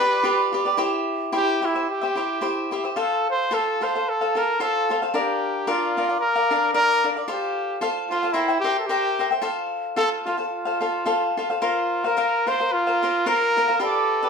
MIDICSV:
0, 0, Header, 1, 3, 480
1, 0, Start_track
1, 0, Key_signature, -1, "major"
1, 0, Tempo, 545951
1, 686, Time_signature, 4, 2, 24, 8
1, 4047, Tempo, 536673
1, 8847, Tempo, 545951
1, 12649, End_track
2, 0, Start_track
2, 0, Title_t, "Cavaquinho"
2, 0, Program_c, 0, 24
2, 0, Note_on_c, 0, 65, 62
2, 0, Note_on_c, 0, 67, 59
2, 6, Note_on_c, 0, 71, 61
2, 7, Note_on_c, 0, 74, 66
2, 196, Note_off_c, 0, 65, 0
2, 202, Note_off_c, 0, 67, 0
2, 202, Note_off_c, 0, 71, 0
2, 206, Note_on_c, 0, 65, 68
2, 211, Note_off_c, 0, 74, 0
2, 212, Note_on_c, 0, 71, 76
2, 213, Note_on_c, 0, 67, 76
2, 221, Note_on_c, 0, 74, 81
2, 451, Note_off_c, 0, 65, 0
2, 462, Note_on_c, 0, 65, 58
2, 463, Note_off_c, 0, 71, 0
2, 464, Note_off_c, 0, 67, 0
2, 471, Note_off_c, 0, 74, 0
2, 474, Note_on_c, 0, 71, 59
2, 475, Note_on_c, 0, 67, 59
2, 481, Note_on_c, 0, 74, 67
2, 563, Note_off_c, 0, 74, 0
2, 570, Note_off_c, 0, 71, 0
2, 573, Note_on_c, 0, 74, 55
2, 574, Note_off_c, 0, 65, 0
2, 577, Note_off_c, 0, 67, 0
2, 581, Note_on_c, 0, 71, 43
2, 588, Note_on_c, 0, 67, 45
2, 674, Note_off_c, 0, 67, 0
2, 680, Note_on_c, 0, 64, 73
2, 684, Note_off_c, 0, 74, 0
2, 685, Note_off_c, 0, 71, 0
2, 685, Note_on_c, 0, 67, 87
2, 689, Note_on_c, 0, 72, 77
2, 691, Note_on_c, 0, 76, 80
2, 1154, Note_off_c, 0, 64, 0
2, 1154, Note_off_c, 0, 67, 0
2, 1162, Note_off_c, 0, 76, 0
2, 1164, Note_off_c, 0, 72, 0
2, 1164, Note_on_c, 0, 64, 62
2, 1165, Note_on_c, 0, 67, 71
2, 1167, Note_on_c, 0, 72, 80
2, 1173, Note_on_c, 0, 76, 71
2, 1408, Note_off_c, 0, 64, 0
2, 1414, Note_off_c, 0, 67, 0
2, 1415, Note_off_c, 0, 76, 0
2, 1418, Note_on_c, 0, 64, 38
2, 1420, Note_off_c, 0, 72, 0
2, 1424, Note_on_c, 0, 67, 51
2, 1426, Note_on_c, 0, 76, 56
2, 1431, Note_on_c, 0, 72, 47
2, 1527, Note_off_c, 0, 76, 0
2, 1533, Note_off_c, 0, 64, 0
2, 1534, Note_off_c, 0, 72, 0
2, 1536, Note_off_c, 0, 67, 0
2, 1538, Note_on_c, 0, 76, 37
2, 1544, Note_on_c, 0, 72, 41
2, 1546, Note_on_c, 0, 67, 34
2, 1760, Note_off_c, 0, 76, 0
2, 1771, Note_on_c, 0, 76, 50
2, 1774, Note_off_c, 0, 72, 0
2, 1778, Note_off_c, 0, 67, 0
2, 1785, Note_on_c, 0, 72, 42
2, 1788, Note_on_c, 0, 67, 45
2, 1893, Note_off_c, 0, 67, 0
2, 1894, Note_on_c, 0, 64, 54
2, 1899, Note_off_c, 0, 72, 0
2, 1904, Note_on_c, 0, 67, 48
2, 1905, Note_off_c, 0, 76, 0
2, 1909, Note_on_c, 0, 72, 58
2, 1914, Note_on_c, 0, 76, 66
2, 2109, Note_off_c, 0, 64, 0
2, 2114, Note_off_c, 0, 67, 0
2, 2117, Note_off_c, 0, 72, 0
2, 2120, Note_on_c, 0, 64, 60
2, 2122, Note_off_c, 0, 76, 0
2, 2125, Note_on_c, 0, 67, 62
2, 2128, Note_on_c, 0, 72, 73
2, 2132, Note_on_c, 0, 76, 68
2, 2374, Note_off_c, 0, 64, 0
2, 2381, Note_off_c, 0, 67, 0
2, 2382, Note_off_c, 0, 72, 0
2, 2385, Note_on_c, 0, 64, 49
2, 2392, Note_off_c, 0, 76, 0
2, 2392, Note_on_c, 0, 67, 54
2, 2393, Note_on_c, 0, 72, 58
2, 2402, Note_on_c, 0, 76, 60
2, 2484, Note_off_c, 0, 76, 0
2, 2493, Note_off_c, 0, 72, 0
2, 2494, Note_on_c, 0, 76, 36
2, 2495, Note_off_c, 0, 67, 0
2, 2496, Note_off_c, 0, 64, 0
2, 2503, Note_on_c, 0, 72, 38
2, 2505, Note_on_c, 0, 67, 34
2, 2599, Note_off_c, 0, 72, 0
2, 2603, Note_on_c, 0, 65, 63
2, 2605, Note_off_c, 0, 67, 0
2, 2605, Note_off_c, 0, 76, 0
2, 2608, Note_on_c, 0, 77, 64
2, 2609, Note_on_c, 0, 69, 62
2, 2610, Note_on_c, 0, 72, 67
2, 3081, Note_off_c, 0, 65, 0
2, 3082, Note_off_c, 0, 69, 0
2, 3085, Note_on_c, 0, 65, 67
2, 3087, Note_off_c, 0, 72, 0
2, 3092, Note_on_c, 0, 69, 69
2, 3093, Note_off_c, 0, 77, 0
2, 3096, Note_on_c, 0, 77, 70
2, 3097, Note_on_c, 0, 72, 72
2, 3339, Note_off_c, 0, 65, 0
2, 3344, Note_off_c, 0, 69, 0
2, 3349, Note_off_c, 0, 72, 0
2, 3350, Note_on_c, 0, 65, 46
2, 3354, Note_off_c, 0, 77, 0
2, 3355, Note_on_c, 0, 69, 47
2, 3359, Note_on_c, 0, 72, 47
2, 3367, Note_on_c, 0, 77, 57
2, 3460, Note_off_c, 0, 65, 0
2, 3462, Note_off_c, 0, 69, 0
2, 3463, Note_off_c, 0, 77, 0
2, 3464, Note_off_c, 0, 72, 0
2, 3474, Note_on_c, 0, 77, 42
2, 3477, Note_on_c, 0, 72, 35
2, 3485, Note_on_c, 0, 69, 34
2, 3691, Note_off_c, 0, 77, 0
2, 3693, Note_off_c, 0, 72, 0
2, 3700, Note_off_c, 0, 69, 0
2, 3701, Note_on_c, 0, 77, 47
2, 3703, Note_on_c, 0, 72, 44
2, 3711, Note_on_c, 0, 69, 44
2, 3824, Note_off_c, 0, 69, 0
2, 3826, Note_on_c, 0, 65, 53
2, 3830, Note_off_c, 0, 72, 0
2, 3831, Note_off_c, 0, 77, 0
2, 3835, Note_on_c, 0, 69, 64
2, 3840, Note_on_c, 0, 72, 56
2, 3842, Note_on_c, 0, 77, 49
2, 4034, Note_off_c, 0, 65, 0
2, 4039, Note_off_c, 0, 72, 0
2, 4040, Note_off_c, 0, 69, 0
2, 4041, Note_off_c, 0, 77, 0
2, 4044, Note_on_c, 0, 65, 69
2, 4050, Note_on_c, 0, 72, 71
2, 4051, Note_on_c, 0, 69, 77
2, 4052, Note_on_c, 0, 77, 76
2, 4303, Note_off_c, 0, 65, 0
2, 4310, Note_off_c, 0, 69, 0
2, 4312, Note_off_c, 0, 72, 0
2, 4313, Note_off_c, 0, 77, 0
2, 4314, Note_on_c, 0, 65, 60
2, 4321, Note_on_c, 0, 69, 46
2, 4322, Note_on_c, 0, 72, 54
2, 4326, Note_on_c, 0, 77, 55
2, 4409, Note_off_c, 0, 77, 0
2, 4416, Note_off_c, 0, 72, 0
2, 4420, Note_on_c, 0, 77, 44
2, 4422, Note_off_c, 0, 65, 0
2, 4426, Note_off_c, 0, 69, 0
2, 4427, Note_on_c, 0, 72, 36
2, 4436, Note_on_c, 0, 69, 39
2, 4525, Note_off_c, 0, 69, 0
2, 4525, Note_on_c, 0, 62, 71
2, 4528, Note_off_c, 0, 77, 0
2, 4529, Note_on_c, 0, 70, 65
2, 4531, Note_off_c, 0, 72, 0
2, 4535, Note_on_c, 0, 74, 69
2, 4538, Note_on_c, 0, 77, 75
2, 4993, Note_off_c, 0, 62, 0
2, 4993, Note_off_c, 0, 70, 0
2, 4995, Note_off_c, 0, 74, 0
2, 5003, Note_on_c, 0, 62, 64
2, 5003, Note_on_c, 0, 70, 77
2, 5005, Note_off_c, 0, 77, 0
2, 5005, Note_on_c, 0, 74, 79
2, 5008, Note_on_c, 0, 77, 78
2, 5259, Note_off_c, 0, 62, 0
2, 5267, Note_off_c, 0, 70, 0
2, 5267, Note_off_c, 0, 77, 0
2, 5268, Note_off_c, 0, 74, 0
2, 5270, Note_on_c, 0, 62, 44
2, 5277, Note_on_c, 0, 70, 55
2, 5278, Note_on_c, 0, 74, 48
2, 5278, Note_on_c, 0, 77, 54
2, 5365, Note_off_c, 0, 77, 0
2, 5370, Note_off_c, 0, 74, 0
2, 5371, Note_off_c, 0, 70, 0
2, 5375, Note_on_c, 0, 77, 38
2, 5378, Note_off_c, 0, 62, 0
2, 5381, Note_on_c, 0, 74, 36
2, 5382, Note_on_c, 0, 70, 36
2, 5604, Note_off_c, 0, 77, 0
2, 5610, Note_off_c, 0, 74, 0
2, 5615, Note_on_c, 0, 77, 55
2, 5616, Note_off_c, 0, 70, 0
2, 5621, Note_on_c, 0, 74, 41
2, 5627, Note_on_c, 0, 70, 41
2, 5740, Note_off_c, 0, 70, 0
2, 5742, Note_off_c, 0, 74, 0
2, 5746, Note_off_c, 0, 77, 0
2, 5748, Note_on_c, 0, 62, 56
2, 5750, Note_on_c, 0, 70, 50
2, 5752, Note_on_c, 0, 74, 57
2, 5758, Note_on_c, 0, 77, 68
2, 5951, Note_off_c, 0, 62, 0
2, 5952, Note_off_c, 0, 70, 0
2, 5952, Note_off_c, 0, 74, 0
2, 5954, Note_off_c, 0, 77, 0
2, 5962, Note_on_c, 0, 62, 62
2, 5963, Note_on_c, 0, 70, 70
2, 5963, Note_on_c, 0, 74, 76
2, 5964, Note_on_c, 0, 77, 80
2, 6216, Note_off_c, 0, 62, 0
2, 6218, Note_off_c, 0, 70, 0
2, 6225, Note_off_c, 0, 74, 0
2, 6225, Note_off_c, 0, 77, 0
2, 6227, Note_on_c, 0, 62, 60
2, 6228, Note_on_c, 0, 70, 58
2, 6234, Note_on_c, 0, 74, 53
2, 6236, Note_on_c, 0, 77, 48
2, 6325, Note_off_c, 0, 77, 0
2, 6330, Note_off_c, 0, 74, 0
2, 6332, Note_off_c, 0, 70, 0
2, 6335, Note_off_c, 0, 62, 0
2, 6335, Note_on_c, 0, 77, 38
2, 6341, Note_on_c, 0, 74, 41
2, 6343, Note_on_c, 0, 70, 34
2, 6434, Note_off_c, 0, 77, 0
2, 6438, Note_on_c, 0, 65, 73
2, 6439, Note_off_c, 0, 70, 0
2, 6442, Note_on_c, 0, 69, 70
2, 6444, Note_on_c, 0, 77, 74
2, 6447, Note_off_c, 0, 74, 0
2, 6450, Note_on_c, 0, 72, 72
2, 6905, Note_off_c, 0, 65, 0
2, 6907, Note_off_c, 0, 69, 0
2, 6916, Note_off_c, 0, 77, 0
2, 6916, Note_on_c, 0, 65, 65
2, 6917, Note_on_c, 0, 69, 73
2, 6919, Note_off_c, 0, 72, 0
2, 6923, Note_on_c, 0, 72, 90
2, 6927, Note_on_c, 0, 77, 86
2, 7172, Note_off_c, 0, 65, 0
2, 7181, Note_off_c, 0, 69, 0
2, 7181, Note_off_c, 0, 72, 0
2, 7182, Note_on_c, 0, 65, 46
2, 7183, Note_off_c, 0, 77, 0
2, 7191, Note_on_c, 0, 69, 51
2, 7192, Note_on_c, 0, 72, 64
2, 7194, Note_on_c, 0, 77, 54
2, 7279, Note_off_c, 0, 77, 0
2, 7289, Note_off_c, 0, 69, 0
2, 7289, Note_off_c, 0, 72, 0
2, 7290, Note_on_c, 0, 77, 49
2, 7292, Note_off_c, 0, 65, 0
2, 7299, Note_on_c, 0, 72, 38
2, 7300, Note_on_c, 0, 69, 33
2, 7379, Note_off_c, 0, 72, 0
2, 7384, Note_on_c, 0, 70, 67
2, 7386, Note_off_c, 0, 69, 0
2, 7389, Note_on_c, 0, 76, 75
2, 7390, Note_on_c, 0, 72, 70
2, 7392, Note_off_c, 0, 77, 0
2, 7396, Note_on_c, 0, 79, 66
2, 7503, Note_off_c, 0, 79, 0
2, 7514, Note_off_c, 0, 76, 0
2, 7514, Note_on_c, 0, 79, 53
2, 7520, Note_off_c, 0, 72, 0
2, 7523, Note_off_c, 0, 70, 0
2, 7525, Note_on_c, 0, 76, 47
2, 7530, Note_on_c, 0, 72, 43
2, 7651, Note_off_c, 0, 72, 0
2, 7654, Note_off_c, 0, 79, 0
2, 7659, Note_off_c, 0, 76, 0
2, 7659, Note_on_c, 0, 70, 54
2, 7661, Note_on_c, 0, 72, 55
2, 7668, Note_on_c, 0, 76, 62
2, 7674, Note_on_c, 0, 79, 59
2, 7873, Note_off_c, 0, 70, 0
2, 7879, Note_off_c, 0, 72, 0
2, 7884, Note_off_c, 0, 79, 0
2, 7884, Note_on_c, 0, 70, 72
2, 7885, Note_off_c, 0, 76, 0
2, 7890, Note_on_c, 0, 72, 63
2, 7895, Note_on_c, 0, 79, 87
2, 7897, Note_on_c, 0, 76, 74
2, 8141, Note_off_c, 0, 70, 0
2, 8147, Note_off_c, 0, 72, 0
2, 8151, Note_on_c, 0, 70, 51
2, 8152, Note_off_c, 0, 79, 0
2, 8153, Note_off_c, 0, 76, 0
2, 8158, Note_on_c, 0, 72, 49
2, 8164, Note_on_c, 0, 76, 56
2, 8165, Note_on_c, 0, 79, 55
2, 8243, Note_off_c, 0, 79, 0
2, 8254, Note_off_c, 0, 76, 0
2, 8254, Note_on_c, 0, 79, 43
2, 8256, Note_off_c, 0, 72, 0
2, 8258, Note_off_c, 0, 70, 0
2, 8265, Note_on_c, 0, 76, 38
2, 8267, Note_on_c, 0, 72, 41
2, 8349, Note_off_c, 0, 72, 0
2, 8351, Note_on_c, 0, 65, 79
2, 8356, Note_off_c, 0, 76, 0
2, 8356, Note_on_c, 0, 69, 85
2, 8359, Note_on_c, 0, 72, 77
2, 8362, Note_off_c, 0, 79, 0
2, 8366, Note_on_c, 0, 77, 77
2, 8838, Note_off_c, 0, 65, 0
2, 8838, Note_off_c, 0, 69, 0
2, 8842, Note_on_c, 0, 65, 75
2, 8845, Note_off_c, 0, 72, 0
2, 8845, Note_off_c, 0, 77, 0
2, 8848, Note_on_c, 0, 72, 73
2, 8849, Note_on_c, 0, 69, 57
2, 8849, Note_on_c, 0, 77, 70
2, 9093, Note_off_c, 0, 65, 0
2, 9097, Note_off_c, 0, 69, 0
2, 9101, Note_off_c, 0, 72, 0
2, 9104, Note_on_c, 0, 65, 42
2, 9106, Note_off_c, 0, 77, 0
2, 9107, Note_on_c, 0, 69, 54
2, 9112, Note_on_c, 0, 72, 44
2, 9117, Note_on_c, 0, 77, 47
2, 9192, Note_off_c, 0, 77, 0
2, 9199, Note_off_c, 0, 72, 0
2, 9203, Note_on_c, 0, 77, 42
2, 9210, Note_off_c, 0, 69, 0
2, 9210, Note_on_c, 0, 72, 38
2, 9215, Note_off_c, 0, 65, 0
2, 9221, Note_on_c, 0, 69, 35
2, 9437, Note_off_c, 0, 77, 0
2, 9447, Note_off_c, 0, 72, 0
2, 9448, Note_on_c, 0, 77, 48
2, 9449, Note_off_c, 0, 69, 0
2, 9457, Note_on_c, 0, 72, 45
2, 9459, Note_on_c, 0, 69, 42
2, 9575, Note_off_c, 0, 69, 0
2, 9581, Note_off_c, 0, 72, 0
2, 9581, Note_on_c, 0, 65, 49
2, 9582, Note_off_c, 0, 77, 0
2, 9586, Note_on_c, 0, 69, 53
2, 9592, Note_on_c, 0, 72, 52
2, 9593, Note_on_c, 0, 77, 62
2, 9791, Note_off_c, 0, 65, 0
2, 9797, Note_off_c, 0, 72, 0
2, 9797, Note_off_c, 0, 77, 0
2, 9798, Note_off_c, 0, 69, 0
2, 9801, Note_on_c, 0, 65, 57
2, 9807, Note_on_c, 0, 77, 77
2, 9808, Note_on_c, 0, 69, 68
2, 9808, Note_on_c, 0, 72, 72
2, 10071, Note_off_c, 0, 65, 0
2, 10071, Note_off_c, 0, 69, 0
2, 10078, Note_off_c, 0, 77, 0
2, 10079, Note_off_c, 0, 72, 0
2, 10081, Note_on_c, 0, 65, 52
2, 10081, Note_on_c, 0, 69, 46
2, 10090, Note_on_c, 0, 72, 52
2, 10095, Note_on_c, 0, 77, 58
2, 10180, Note_off_c, 0, 77, 0
2, 10185, Note_off_c, 0, 72, 0
2, 10190, Note_on_c, 0, 77, 42
2, 10192, Note_off_c, 0, 65, 0
2, 10192, Note_off_c, 0, 69, 0
2, 10195, Note_on_c, 0, 72, 35
2, 10201, Note_on_c, 0, 69, 36
2, 10288, Note_off_c, 0, 77, 0
2, 10289, Note_off_c, 0, 72, 0
2, 10292, Note_off_c, 0, 69, 0
2, 10294, Note_on_c, 0, 65, 66
2, 10296, Note_on_c, 0, 70, 60
2, 10298, Note_on_c, 0, 77, 77
2, 10299, Note_on_c, 0, 72, 69
2, 10658, Note_off_c, 0, 77, 0
2, 10666, Note_off_c, 0, 72, 0
2, 10669, Note_on_c, 0, 77, 48
2, 10670, Note_off_c, 0, 65, 0
2, 10671, Note_off_c, 0, 70, 0
2, 10677, Note_on_c, 0, 72, 46
2, 10688, Note_on_c, 0, 70, 42
2, 10770, Note_off_c, 0, 70, 0
2, 10776, Note_off_c, 0, 72, 0
2, 10778, Note_off_c, 0, 77, 0
2, 10779, Note_on_c, 0, 65, 65
2, 10780, Note_on_c, 0, 70, 68
2, 10786, Note_on_c, 0, 72, 64
2, 10788, Note_on_c, 0, 77, 81
2, 11030, Note_off_c, 0, 65, 0
2, 11038, Note_off_c, 0, 70, 0
2, 11039, Note_off_c, 0, 72, 0
2, 11041, Note_on_c, 0, 65, 52
2, 11042, Note_off_c, 0, 77, 0
2, 11048, Note_on_c, 0, 70, 50
2, 11049, Note_on_c, 0, 72, 49
2, 11053, Note_on_c, 0, 77, 53
2, 11147, Note_off_c, 0, 77, 0
2, 11152, Note_off_c, 0, 65, 0
2, 11153, Note_off_c, 0, 72, 0
2, 11156, Note_off_c, 0, 70, 0
2, 11157, Note_on_c, 0, 77, 40
2, 11164, Note_on_c, 0, 72, 39
2, 11168, Note_on_c, 0, 70, 38
2, 11385, Note_off_c, 0, 77, 0
2, 11386, Note_off_c, 0, 72, 0
2, 11395, Note_on_c, 0, 77, 49
2, 11397, Note_on_c, 0, 72, 49
2, 11401, Note_off_c, 0, 70, 0
2, 11410, Note_on_c, 0, 70, 41
2, 11525, Note_off_c, 0, 77, 0
2, 11526, Note_off_c, 0, 72, 0
2, 11527, Note_off_c, 0, 70, 0
2, 11533, Note_on_c, 0, 65, 55
2, 11537, Note_on_c, 0, 70, 57
2, 11544, Note_on_c, 0, 72, 64
2, 11544, Note_on_c, 0, 77, 68
2, 11730, Note_off_c, 0, 65, 0
2, 11734, Note_off_c, 0, 70, 0
2, 11734, Note_off_c, 0, 72, 0
2, 11741, Note_off_c, 0, 77, 0
2, 11741, Note_on_c, 0, 65, 68
2, 11744, Note_on_c, 0, 70, 86
2, 11745, Note_on_c, 0, 72, 65
2, 11751, Note_on_c, 0, 77, 81
2, 12000, Note_off_c, 0, 65, 0
2, 12002, Note_off_c, 0, 70, 0
2, 12002, Note_off_c, 0, 72, 0
2, 12005, Note_off_c, 0, 77, 0
2, 12012, Note_on_c, 0, 65, 61
2, 12018, Note_on_c, 0, 72, 53
2, 12019, Note_on_c, 0, 70, 51
2, 12023, Note_on_c, 0, 77, 61
2, 12099, Note_off_c, 0, 77, 0
2, 12106, Note_off_c, 0, 72, 0
2, 12110, Note_on_c, 0, 77, 52
2, 12113, Note_off_c, 0, 70, 0
2, 12114, Note_off_c, 0, 65, 0
2, 12117, Note_on_c, 0, 72, 41
2, 12124, Note_on_c, 0, 70, 39
2, 12210, Note_off_c, 0, 70, 0
2, 12210, Note_on_c, 0, 65, 72
2, 12213, Note_off_c, 0, 72, 0
2, 12213, Note_on_c, 0, 67, 68
2, 12216, Note_off_c, 0, 77, 0
2, 12216, Note_on_c, 0, 71, 68
2, 12223, Note_on_c, 0, 74, 76
2, 12577, Note_off_c, 0, 65, 0
2, 12578, Note_off_c, 0, 67, 0
2, 12579, Note_off_c, 0, 74, 0
2, 12580, Note_off_c, 0, 71, 0
2, 12589, Note_on_c, 0, 74, 61
2, 12595, Note_on_c, 0, 71, 43
2, 12601, Note_on_c, 0, 67, 45
2, 12649, Note_off_c, 0, 67, 0
2, 12649, Note_off_c, 0, 71, 0
2, 12649, Note_off_c, 0, 74, 0
2, 12649, End_track
3, 0, Start_track
3, 0, Title_t, "Trumpet"
3, 0, Program_c, 1, 56
3, 0, Note_on_c, 1, 71, 90
3, 438, Note_off_c, 1, 71, 0
3, 1198, Note_on_c, 1, 67, 101
3, 1453, Note_on_c, 1, 64, 80
3, 1466, Note_off_c, 1, 67, 0
3, 1659, Note_off_c, 1, 64, 0
3, 1674, Note_on_c, 1, 67, 74
3, 2367, Note_off_c, 1, 67, 0
3, 2637, Note_on_c, 1, 69, 79
3, 2868, Note_off_c, 1, 69, 0
3, 2907, Note_on_c, 1, 72, 90
3, 3111, Note_on_c, 1, 69, 85
3, 3124, Note_off_c, 1, 72, 0
3, 3370, Note_on_c, 1, 72, 75
3, 3383, Note_off_c, 1, 69, 0
3, 3597, Note_on_c, 1, 69, 83
3, 3610, Note_off_c, 1, 72, 0
3, 3849, Note_on_c, 1, 70, 92
3, 3862, Note_off_c, 1, 69, 0
3, 4056, Note_off_c, 1, 70, 0
3, 4065, Note_on_c, 1, 69, 89
3, 4404, Note_off_c, 1, 69, 0
3, 4554, Note_on_c, 1, 67, 76
3, 5020, Note_on_c, 1, 65, 80
3, 5033, Note_off_c, 1, 67, 0
3, 5470, Note_off_c, 1, 65, 0
3, 5475, Note_on_c, 1, 70, 84
3, 5925, Note_off_c, 1, 70, 0
3, 5954, Note_on_c, 1, 70, 102
3, 6303, Note_off_c, 1, 70, 0
3, 6475, Note_on_c, 1, 67, 72
3, 6911, Note_off_c, 1, 67, 0
3, 7180, Note_on_c, 1, 65, 79
3, 7375, Note_on_c, 1, 64, 79
3, 7389, Note_off_c, 1, 65, 0
3, 7616, Note_off_c, 1, 64, 0
3, 7621, Note_on_c, 1, 67, 92
3, 7789, Note_off_c, 1, 67, 0
3, 7795, Note_on_c, 1, 69, 55
3, 7857, Note_on_c, 1, 67, 89
3, 7870, Note_off_c, 1, 69, 0
3, 8243, Note_off_c, 1, 67, 0
3, 8845, Note_on_c, 1, 69, 94
3, 8962, Note_off_c, 1, 69, 0
3, 9092, Note_on_c, 1, 65, 71
3, 9194, Note_off_c, 1, 65, 0
3, 9330, Note_on_c, 1, 65, 62
3, 10049, Note_off_c, 1, 65, 0
3, 10305, Note_on_c, 1, 65, 81
3, 10682, Note_on_c, 1, 70, 96
3, 10695, Note_off_c, 1, 65, 0
3, 11055, Note_on_c, 1, 72, 84
3, 11068, Note_off_c, 1, 70, 0
3, 11270, Note_on_c, 1, 65, 85
3, 11284, Note_off_c, 1, 72, 0
3, 11757, Note_on_c, 1, 70, 96
3, 11771, Note_off_c, 1, 65, 0
3, 12224, Note_off_c, 1, 70, 0
3, 12236, Note_on_c, 1, 69, 81
3, 12649, Note_off_c, 1, 69, 0
3, 12649, End_track
0, 0, End_of_file